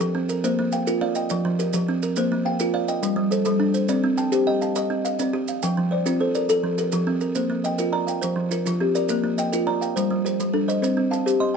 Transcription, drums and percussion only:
0, 0, Header, 1, 2, 480
1, 0, Start_track
1, 0, Key_signature, -2, "major"
1, 0, Tempo, 288878
1, 726, Time_signature, 12, 3, 24, 8
1, 19221, End_track
2, 0, Start_track
2, 0, Title_t, "Drums"
2, 7, Note_on_c, 9, 70, 70
2, 173, Note_off_c, 9, 70, 0
2, 485, Note_on_c, 9, 70, 63
2, 651, Note_off_c, 9, 70, 0
2, 734, Note_on_c, 9, 70, 70
2, 900, Note_off_c, 9, 70, 0
2, 1200, Note_on_c, 9, 70, 53
2, 1366, Note_off_c, 9, 70, 0
2, 1448, Note_on_c, 9, 70, 75
2, 1615, Note_off_c, 9, 70, 0
2, 1911, Note_on_c, 9, 70, 64
2, 2077, Note_off_c, 9, 70, 0
2, 2154, Note_on_c, 9, 70, 75
2, 2320, Note_off_c, 9, 70, 0
2, 2650, Note_on_c, 9, 70, 66
2, 2816, Note_off_c, 9, 70, 0
2, 2876, Note_on_c, 9, 70, 74
2, 3042, Note_off_c, 9, 70, 0
2, 3364, Note_on_c, 9, 70, 59
2, 3530, Note_off_c, 9, 70, 0
2, 3592, Note_on_c, 9, 70, 74
2, 3758, Note_off_c, 9, 70, 0
2, 4311, Note_on_c, 9, 70, 72
2, 4477, Note_off_c, 9, 70, 0
2, 4789, Note_on_c, 9, 70, 57
2, 4956, Note_off_c, 9, 70, 0
2, 5034, Note_on_c, 9, 70, 80
2, 5200, Note_off_c, 9, 70, 0
2, 5511, Note_on_c, 9, 70, 65
2, 5677, Note_off_c, 9, 70, 0
2, 5736, Note_on_c, 9, 70, 63
2, 5902, Note_off_c, 9, 70, 0
2, 6217, Note_on_c, 9, 70, 53
2, 6383, Note_off_c, 9, 70, 0
2, 6454, Note_on_c, 9, 70, 67
2, 6621, Note_off_c, 9, 70, 0
2, 6937, Note_on_c, 9, 70, 54
2, 7103, Note_off_c, 9, 70, 0
2, 7184, Note_on_c, 9, 70, 71
2, 7351, Note_off_c, 9, 70, 0
2, 7670, Note_on_c, 9, 70, 60
2, 7836, Note_off_c, 9, 70, 0
2, 7901, Note_on_c, 9, 70, 67
2, 8068, Note_off_c, 9, 70, 0
2, 8397, Note_on_c, 9, 70, 72
2, 8563, Note_off_c, 9, 70, 0
2, 8626, Note_on_c, 9, 70, 64
2, 8793, Note_off_c, 9, 70, 0
2, 9103, Note_on_c, 9, 70, 62
2, 9269, Note_off_c, 9, 70, 0
2, 9348, Note_on_c, 9, 70, 76
2, 9514, Note_off_c, 9, 70, 0
2, 10071, Note_on_c, 9, 70, 78
2, 10237, Note_off_c, 9, 70, 0
2, 10547, Note_on_c, 9, 70, 63
2, 10713, Note_off_c, 9, 70, 0
2, 10786, Note_on_c, 9, 70, 72
2, 10953, Note_off_c, 9, 70, 0
2, 11267, Note_on_c, 9, 70, 66
2, 11433, Note_off_c, 9, 70, 0
2, 11499, Note_on_c, 9, 70, 69
2, 11665, Note_off_c, 9, 70, 0
2, 11974, Note_on_c, 9, 70, 57
2, 12140, Note_off_c, 9, 70, 0
2, 12213, Note_on_c, 9, 70, 65
2, 12379, Note_off_c, 9, 70, 0
2, 12702, Note_on_c, 9, 70, 52
2, 12868, Note_off_c, 9, 70, 0
2, 12935, Note_on_c, 9, 70, 65
2, 13101, Note_off_c, 9, 70, 0
2, 13425, Note_on_c, 9, 70, 59
2, 13591, Note_off_c, 9, 70, 0
2, 13667, Note_on_c, 9, 70, 79
2, 13833, Note_off_c, 9, 70, 0
2, 14143, Note_on_c, 9, 70, 69
2, 14310, Note_off_c, 9, 70, 0
2, 14395, Note_on_c, 9, 70, 76
2, 14561, Note_off_c, 9, 70, 0
2, 14873, Note_on_c, 9, 70, 65
2, 15039, Note_off_c, 9, 70, 0
2, 15100, Note_on_c, 9, 70, 87
2, 15266, Note_off_c, 9, 70, 0
2, 15587, Note_on_c, 9, 70, 66
2, 15753, Note_off_c, 9, 70, 0
2, 15836, Note_on_c, 9, 70, 72
2, 16002, Note_off_c, 9, 70, 0
2, 16321, Note_on_c, 9, 70, 60
2, 16487, Note_off_c, 9, 70, 0
2, 16563, Note_on_c, 9, 70, 71
2, 16729, Note_off_c, 9, 70, 0
2, 17048, Note_on_c, 9, 70, 55
2, 17214, Note_off_c, 9, 70, 0
2, 17282, Note_on_c, 9, 70, 53
2, 17448, Note_off_c, 9, 70, 0
2, 17767, Note_on_c, 9, 70, 48
2, 17933, Note_off_c, 9, 70, 0
2, 18005, Note_on_c, 9, 70, 60
2, 18171, Note_off_c, 9, 70, 0
2, 18496, Note_on_c, 9, 70, 46
2, 18662, Note_off_c, 9, 70, 0
2, 18734, Note_on_c, 9, 70, 56
2, 18900, Note_off_c, 9, 70, 0
2, 19221, End_track
0, 0, End_of_file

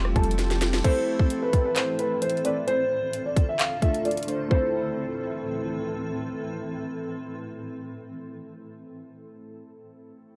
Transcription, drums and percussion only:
0, 0, Header, 1, 2, 480
1, 0, Start_track
1, 0, Key_signature, 0, "minor"
1, 0, Tempo, 458015
1, 886, Time_signature, 4, 2, 24, 8
1, 10857, End_track
2, 0, Start_track
2, 0, Title_t, "Drums"
2, 52, Note_on_c, 9, 37, 87
2, 157, Note_off_c, 9, 37, 0
2, 166, Note_on_c, 9, 36, 94
2, 166, Note_on_c, 9, 42, 42
2, 246, Note_off_c, 9, 42, 0
2, 246, Note_on_c, 9, 42, 55
2, 271, Note_off_c, 9, 36, 0
2, 325, Note_off_c, 9, 42, 0
2, 325, Note_on_c, 9, 42, 66
2, 405, Note_off_c, 9, 42, 0
2, 405, Note_on_c, 9, 38, 63
2, 405, Note_on_c, 9, 42, 74
2, 510, Note_off_c, 9, 38, 0
2, 510, Note_off_c, 9, 42, 0
2, 533, Note_on_c, 9, 38, 70
2, 533, Note_on_c, 9, 42, 45
2, 638, Note_off_c, 9, 38, 0
2, 638, Note_off_c, 9, 42, 0
2, 646, Note_on_c, 9, 38, 96
2, 646, Note_on_c, 9, 42, 69
2, 751, Note_off_c, 9, 38, 0
2, 751, Note_off_c, 9, 42, 0
2, 773, Note_on_c, 9, 38, 103
2, 878, Note_off_c, 9, 38, 0
2, 885, Note_on_c, 9, 42, 65
2, 885, Note_on_c, 9, 49, 89
2, 886, Note_on_c, 9, 36, 107
2, 989, Note_off_c, 9, 49, 0
2, 990, Note_off_c, 9, 36, 0
2, 990, Note_off_c, 9, 42, 0
2, 1252, Note_on_c, 9, 36, 91
2, 1357, Note_off_c, 9, 36, 0
2, 1364, Note_on_c, 9, 42, 72
2, 1469, Note_off_c, 9, 42, 0
2, 1605, Note_on_c, 9, 36, 90
2, 1606, Note_on_c, 9, 42, 72
2, 1710, Note_off_c, 9, 36, 0
2, 1711, Note_off_c, 9, 42, 0
2, 1844, Note_on_c, 9, 42, 79
2, 1845, Note_on_c, 9, 39, 118
2, 1949, Note_off_c, 9, 42, 0
2, 1950, Note_off_c, 9, 39, 0
2, 2084, Note_on_c, 9, 42, 61
2, 2189, Note_off_c, 9, 42, 0
2, 2325, Note_on_c, 9, 42, 71
2, 2406, Note_off_c, 9, 42, 0
2, 2406, Note_on_c, 9, 42, 56
2, 2486, Note_off_c, 9, 42, 0
2, 2486, Note_on_c, 9, 42, 40
2, 2565, Note_off_c, 9, 42, 0
2, 2565, Note_on_c, 9, 42, 66
2, 2670, Note_off_c, 9, 42, 0
2, 2805, Note_on_c, 9, 42, 61
2, 2910, Note_off_c, 9, 42, 0
2, 3284, Note_on_c, 9, 42, 71
2, 3389, Note_off_c, 9, 42, 0
2, 3526, Note_on_c, 9, 36, 93
2, 3528, Note_on_c, 9, 42, 71
2, 3631, Note_off_c, 9, 36, 0
2, 3633, Note_off_c, 9, 42, 0
2, 3766, Note_on_c, 9, 42, 81
2, 3767, Note_on_c, 9, 39, 116
2, 3871, Note_off_c, 9, 42, 0
2, 3872, Note_off_c, 9, 39, 0
2, 4006, Note_on_c, 9, 36, 87
2, 4006, Note_on_c, 9, 42, 52
2, 4111, Note_off_c, 9, 36, 0
2, 4111, Note_off_c, 9, 42, 0
2, 4134, Note_on_c, 9, 42, 53
2, 4239, Note_off_c, 9, 42, 0
2, 4246, Note_on_c, 9, 42, 44
2, 4309, Note_off_c, 9, 42, 0
2, 4309, Note_on_c, 9, 42, 51
2, 4374, Note_off_c, 9, 42, 0
2, 4374, Note_on_c, 9, 42, 62
2, 4430, Note_off_c, 9, 42, 0
2, 4430, Note_on_c, 9, 42, 70
2, 4488, Note_off_c, 9, 42, 0
2, 4488, Note_on_c, 9, 42, 67
2, 4592, Note_off_c, 9, 42, 0
2, 4726, Note_on_c, 9, 36, 95
2, 4831, Note_off_c, 9, 36, 0
2, 10857, End_track
0, 0, End_of_file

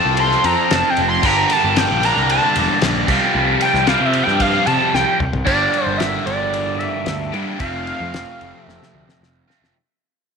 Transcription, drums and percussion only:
0, 0, Header, 1, 2, 480
1, 0, Start_track
1, 0, Tempo, 527704
1, 1122, Time_signature, 4, 2, 24, 8
1, 4966, Tempo, 537634
1, 9347, End_track
2, 0, Start_track
2, 0, Title_t, "Drums"
2, 154, Note_on_c, 9, 51, 110
2, 245, Note_off_c, 9, 51, 0
2, 284, Note_on_c, 9, 38, 36
2, 375, Note_off_c, 9, 38, 0
2, 401, Note_on_c, 9, 51, 86
2, 492, Note_off_c, 9, 51, 0
2, 642, Note_on_c, 9, 51, 114
2, 648, Note_on_c, 9, 38, 117
2, 733, Note_off_c, 9, 51, 0
2, 739, Note_off_c, 9, 38, 0
2, 879, Note_on_c, 9, 51, 78
2, 970, Note_off_c, 9, 51, 0
2, 1117, Note_on_c, 9, 49, 113
2, 1122, Note_on_c, 9, 36, 120
2, 1208, Note_off_c, 9, 49, 0
2, 1212, Note_off_c, 9, 36, 0
2, 1361, Note_on_c, 9, 51, 87
2, 1452, Note_off_c, 9, 51, 0
2, 1603, Note_on_c, 9, 51, 123
2, 1610, Note_on_c, 9, 38, 127
2, 1694, Note_off_c, 9, 51, 0
2, 1701, Note_off_c, 9, 38, 0
2, 1847, Note_on_c, 9, 51, 89
2, 1854, Note_on_c, 9, 38, 38
2, 1938, Note_off_c, 9, 51, 0
2, 1945, Note_off_c, 9, 38, 0
2, 2087, Note_on_c, 9, 51, 124
2, 2178, Note_off_c, 9, 51, 0
2, 2325, Note_on_c, 9, 51, 87
2, 2416, Note_off_c, 9, 51, 0
2, 2561, Note_on_c, 9, 51, 114
2, 2567, Note_on_c, 9, 38, 116
2, 2652, Note_off_c, 9, 51, 0
2, 2658, Note_off_c, 9, 38, 0
2, 2803, Note_on_c, 9, 49, 102
2, 2804, Note_on_c, 9, 36, 107
2, 2894, Note_off_c, 9, 49, 0
2, 2895, Note_off_c, 9, 36, 0
2, 3281, Note_on_c, 9, 51, 81
2, 3372, Note_off_c, 9, 51, 0
2, 3407, Note_on_c, 9, 38, 37
2, 3498, Note_off_c, 9, 38, 0
2, 3519, Note_on_c, 9, 51, 105
2, 3525, Note_on_c, 9, 38, 124
2, 3610, Note_off_c, 9, 51, 0
2, 3616, Note_off_c, 9, 38, 0
2, 3761, Note_on_c, 9, 51, 73
2, 3852, Note_off_c, 9, 51, 0
2, 3890, Note_on_c, 9, 38, 39
2, 3981, Note_off_c, 9, 38, 0
2, 4002, Note_on_c, 9, 51, 111
2, 4003, Note_on_c, 9, 36, 86
2, 4093, Note_off_c, 9, 51, 0
2, 4094, Note_off_c, 9, 36, 0
2, 4245, Note_on_c, 9, 51, 82
2, 4336, Note_off_c, 9, 51, 0
2, 4500, Note_on_c, 9, 38, 69
2, 4591, Note_off_c, 9, 38, 0
2, 4732, Note_on_c, 9, 45, 96
2, 4823, Note_off_c, 9, 45, 0
2, 4852, Note_on_c, 9, 43, 100
2, 4943, Note_off_c, 9, 43, 0
2, 4972, Note_on_c, 9, 57, 89
2, 4973, Note_on_c, 9, 36, 104
2, 5062, Note_off_c, 9, 36, 0
2, 5062, Note_off_c, 9, 57, 0
2, 5213, Note_on_c, 9, 51, 61
2, 5302, Note_off_c, 9, 51, 0
2, 5448, Note_on_c, 9, 51, 80
2, 5454, Note_on_c, 9, 38, 96
2, 5537, Note_off_c, 9, 51, 0
2, 5544, Note_off_c, 9, 38, 0
2, 5688, Note_on_c, 9, 51, 60
2, 5777, Note_off_c, 9, 51, 0
2, 5927, Note_on_c, 9, 51, 78
2, 6016, Note_off_c, 9, 51, 0
2, 6167, Note_on_c, 9, 51, 56
2, 6256, Note_off_c, 9, 51, 0
2, 6395, Note_on_c, 9, 51, 73
2, 6402, Note_on_c, 9, 38, 102
2, 6485, Note_off_c, 9, 51, 0
2, 6491, Note_off_c, 9, 38, 0
2, 6643, Note_on_c, 9, 51, 49
2, 6732, Note_off_c, 9, 51, 0
2, 6875, Note_on_c, 9, 51, 72
2, 6878, Note_on_c, 9, 36, 98
2, 6964, Note_off_c, 9, 51, 0
2, 6968, Note_off_c, 9, 36, 0
2, 7118, Note_on_c, 9, 51, 50
2, 7207, Note_off_c, 9, 51, 0
2, 7358, Note_on_c, 9, 51, 68
2, 7364, Note_on_c, 9, 38, 95
2, 7447, Note_off_c, 9, 51, 0
2, 7453, Note_off_c, 9, 38, 0
2, 7600, Note_on_c, 9, 51, 47
2, 7689, Note_off_c, 9, 51, 0
2, 7849, Note_on_c, 9, 38, 50
2, 7939, Note_off_c, 9, 38, 0
2, 7973, Note_on_c, 9, 38, 45
2, 8062, Note_off_c, 9, 38, 0
2, 8206, Note_on_c, 9, 38, 52
2, 8295, Note_off_c, 9, 38, 0
2, 8333, Note_on_c, 9, 38, 60
2, 8423, Note_off_c, 9, 38, 0
2, 8574, Note_on_c, 9, 38, 68
2, 8663, Note_off_c, 9, 38, 0
2, 8697, Note_on_c, 9, 38, 66
2, 8786, Note_off_c, 9, 38, 0
2, 9347, End_track
0, 0, End_of_file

